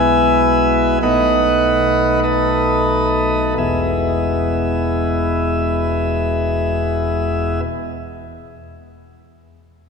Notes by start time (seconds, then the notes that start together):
Already playing: B1 B2 G#3 B3 E4 B4 E5 G#5
1.02 B1 B2 A3 B3 D#4 B4 D#5 F#5
2.23 A4 B4 D#5
3.57 E1 E2 B2 G#3 B3 E4 G#4 E5